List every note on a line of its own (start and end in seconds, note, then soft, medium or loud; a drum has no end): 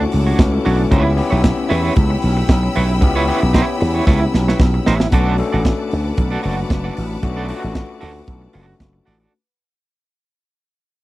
0.00 0.79 A3 loud
0.00 0.65 C#4 medium
0.00 5.08 C#4 medium
0.00 0.54 E4 medium
0.00 0.94 F4 medium
0.00 0.41 F#4 loud
0.00 0.88 F#5 medium
0.00 0.88 A5 medium
0.00 0.88 D6 medium
0.00 muted clean electric guitar stroke soft
0.12 0.32 C#2 loud
0.12 muted clean electric guitar stroke soft
0.12 open hi-hat medium
0.27 0.39 D4 soft
0.27 0.39 F#4 medium
0.27 0.38 C#5 medium
0.39 0.58 C#2 loud
0.39 0.53 F#4 medium
0.39 0.53 B4 medium
0.39 kick loud
0.39 snare loud
0.39 closed hi-hat medium
0.52 0.65 E4 medium
0.52 0.65 A4 medium
0.52 muted clean electric guitar stroke soft
0.65 0.84 B1 loud
0.65 0.79 C#4 medium
0.65 0.82 D4 medium
0.65 0.79 F#4 medium
0.65 0.78 C#5 medium
0.65 open hi-hat medium
0.78 1.04 A3 medium
0.78 1.04 D4 medium
0.78 muted clean electric guitar stroke soft
0.91 1.20 C#2 loud
0.91 1.12 B3 loud
0.91 1.13 C#4 medium
0.91 1.12 E4 medium
0.91 1.13 E4 medium
0.91 1.13 G4 loud
0.91 1.05 B4 loud
0.91 1.04 C#5 loud
0.91 5.08 G5 medium
0.91 5.08 B5 medium
0.91 5.08 E6 loud
0.91 kick loud
0.91 closed hi-hat medium
1.05 muted clean electric guitar stroke soft
1.16 2.00 B3 medium
1.16 2.01 C#4 medium
1.16 2.01 E4 medium
1.16 2.01 G4 medium
1.16 muted clean electric guitar stroke soft
1.16 open hi-hat medium
1.31 1.51 B1 medium
1.31 1.43 E4 medium
1.31 1.42 B4 medium
1.31 1.43 C#5 medium
1.44 kick loud
1.44 snare loud
1.44 closed hi-hat medium
1.57 muted clean electric guitar stroke medium
1.69 1.89 E2 medium
1.69 1.83 E4 medium
1.69 1.82 B4 medium
1.69 1.82 C#5 medium
1.69 open hi-hat medium
1.83 1.95 E4 medium
1.83 1.95 B4 medium
1.83 1.95 C#5 medium
1.96 2.15 C#2 loud
1.96 kick loud
1.96 closed hi-hat medium
2.10 muted clean electric guitar stroke medium
2.22 2.42 B1 loud
2.22 open hi-hat medium
2.37 muted clean electric guitar stroke soft
2.49 2.68 B1 loud
2.49 muted clean electric guitar stroke medium
2.49 kick loud
2.49 snare loud
2.49 closed hi-hat medium
2.63 muted clean electric guitar stroke medium
2.76 3.02 B1 loud
2.76 2.92 E4 medium
2.76 2.88 B4 medium
2.76 2.88 C#5 medium
2.76 open hi-hat medium
2.89 muted clean electric guitar stroke soft
3.01 3.30 C#2 loud
3.01 3.23 B3 medium
3.01 3.23 C#4 medium
3.01 3.23 E4 medium
3.01 3.23 G4 loud
3.01 muted clean electric guitar stroke soft
3.01 kick loud
3.01 closed hi-hat medium
3.16 3.27 E4 medium
3.16 3.27 B4 medium
3.16 3.28 C#5 medium
3.27 4.11 B3 medium
3.27 4.11 C#4 medium
3.27 4.11 E4 medium
3.27 3.41 E4 medium
3.27 4.12 G4 loud
3.27 3.41 B4 medium
3.27 3.41 C#5 medium
3.27 open hi-hat medium
3.42 3.61 B1 medium
3.42 muted clean electric guitar stroke medium
3.53 3.74 E4 medium
3.53 3.67 B4 medium
3.53 3.67 C#5 medium
3.53 kick loud
3.53 snare loud
3.53 closed hi-hat medium
3.80 4.00 E2 loud
3.80 muted clean electric guitar stroke soft
3.80 open hi-hat medium
3.94 4.06 E4 medium
3.94 4.07 B4 soft
3.94 4.06 C#5 medium
4.07 4.26 C#2 loud
4.07 4.23 E4 loud
4.07 4.21 B4 medium
4.07 4.20 C#5 loud
4.07 kick loud
4.07 snare medium
4.21 muted clean electric guitar stroke medium
4.34 4.52 B1 loud
4.34 muted clean electric guitar stroke soft
4.34 snare medium
4.48 4.60 E4 soft
4.48 4.60 B4 medium
4.48 4.59 C#5 medium
4.48 snare medium
4.60 4.78 B1 loud
4.60 kick loud
4.60 snare medium
4.74 muted clean electric guitar stroke medium
4.86 5.05 A1 medium
4.86 5.07 E4 medium
4.86 5.00 B4 medium
4.86 4.99 C#5 medium
4.86 snare loud
5.00 muted clean electric guitar stroke soft
5.00 snare loud
5.12 5.41 B1 loud
5.12 5.33 A3 medium
5.12 5.34 C#4 medium
5.12 5.34 D4 medium
5.12 5.37 F#4 medium
5.12 5.34 F#4 loud
5.12 5.37 A4 loud
5.12 9.29 B4 medium
5.12 5.37 D5 loud
5.12 9.29 F#5 medium
5.12 9.29 A5 medium
5.12 9.29 D6 medium
5.12 kick loud
5.12 closed hi-hat medium
5.38 6.22 A3 medium
5.38 6.22 C#4 medium
5.38 6.22 D4 medium
5.38 6.22 A4 loud
5.38 muted clean electric guitar stroke soft
5.38 open hi-hat medium
5.52 5.72 A1 medium
5.52 5.65 F#4 soft
5.52 5.64 A4 medium
5.52 5.64 D5 medium
5.65 kick loud
5.65 snare loud
5.65 closed hi-hat medium
5.79 muted clean electric guitar stroke soft
5.91 6.11 D2 medium
5.91 open hi-hat medium
6.04 muted clean electric guitar stroke soft
6.17 6.36 B1 loud
6.17 muted clean electric guitar stroke soft
6.17 kick loud
6.17 closed hi-hat medium
6.31 6.42 F#4 medium
6.31 6.42 A4 medium
6.31 6.43 D5 medium
6.43 6.63 F#1 loud
6.43 7.07 A3 medium
6.43 7.07 C#4 medium
6.43 7.07 D4 medium
6.43 7.07 F#4 medium
6.43 6.57 A4 medium
6.43 6.56 D5 medium
6.43 open hi-hat medium
6.57 muted clean electric guitar stroke soft
6.70 6.89 F#1 loud
6.70 muted clean electric guitar stroke soft
6.70 kick loud
6.70 snare loud
6.70 closed hi-hat medium
6.84 6.95 F#4 medium
6.84 6.95 A4 medium
6.84 6.96 D5 medium
6.96 7.16 A1 loud
6.96 muted clean electric guitar stroke soft
6.96 open hi-hat medium
7.10 muted clean electric guitar stroke soft
7.23 7.51 B1 medium
7.23 7.44 A3 medium
7.23 7.44 C#4 medium
7.23 7.44 D4 medium
7.23 7.45 F#4 loud
7.23 muted clean electric guitar stroke soft
7.23 kick loud
7.23 closed hi-hat medium
7.36 7.48 F#4 medium
7.36 7.49 A4 medium
7.36 7.49 D5 medium
7.49 8.32 A3 medium
7.49 8.32 C#4 medium
7.49 8.33 D4 medium
7.49 7.56 F4 medium
7.49 7.62 F#4 medium
7.49 7.62 A4 medium
7.49 7.61 D5 medium
7.49 open hi-hat medium
7.56 8.36 F#4 loud
7.62 7.82 A1 medium
7.62 muted clean electric guitar stroke soft
7.75 kick loud
7.75 snare loud
7.75 closed hi-hat medium
7.89 muted clean electric guitar stroke soft
8.00 8.21 D2 medium
8.00 8.17 F#4 medium
8.00 8.14 A4 medium
8.00 8.14 D5 medium
8.00 open hi-hat medium
8.15 muted clean electric guitar stroke soft
8.27 8.46 B1 loud
8.27 kick loud
8.27 closed hi-hat medium
8.42 muted clean electric guitar stroke medium
8.53 8.73 F#1 loud
8.53 9.17 A3 medium
8.53 9.17 C#4 medium
8.53 9.18 D4 medium
8.53 8.74 F#4 loud
8.53 9.18 F#4 medium
8.53 8.67 A4 loud
8.53 8.66 D5 medium
8.53 open hi-hat medium
8.67 muted clean electric guitar stroke soft
8.80 8.99 F#1 loud
8.80 muted clean electric guitar stroke soft
8.80 kick loud
8.80 snare loud
8.80 closed hi-hat medium
8.93 muted clean electric guitar stroke medium
9.05 9.26 A1 medium
9.05 9.20 F#4 medium
9.05 9.19 A4 medium
9.05 9.19 D5 medium
9.20 9.32 F#4 medium
9.20 9.32 A4 medium
9.20 9.32 D5 medium